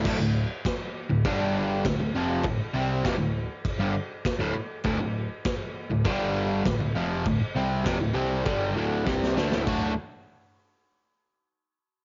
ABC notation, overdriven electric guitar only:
X:1
M:4/4
L:1/16
Q:1/4=100
K:G
V:1 name="Overdriven electric guitar" clef=bass
[D,,A,,] [D,,A,,]2 z4 [D,,A,,] [G,,D,G,]4 [D,,A,,] [D,,A,,] [=F,,C,=F,]2 | [D,,A,,] z [C,G,C]2 [=F,,C,] [D,,A,,]2 z2 [G,,D,] z3 [D,,A,,] z2 | [D,,A,,] [D,,A,,]2 z4 [D,,A,,] [G,,D,G,]4 [D,,A,,] [D,,A,,] [=F,,C,=F,]2 | [D,,A,,] z [C,G,C]2 [=F,,C,] [D,,A,,] [C,G,C]2 [G,,D,G,]2 [D,,A,,D,]2 [C,G,C]2 [D,A,] [D,,A,,] |
[D,,A,,D,A,F]2 z12 z2 |]